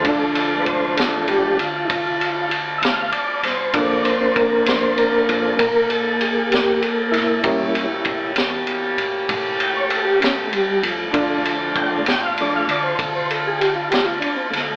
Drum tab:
RD |xxxxxxxxxxxx|xxxxxxxxxxxx|xxxxxxxxxxxx|xxxxxxxxxxxx|
SD |---o-----o-o|---o-----o-o|---o-----o--|---o-----o-o|
BD |o-o---o-----|o-o---o-----|o-o---o-----|o-o---o-----|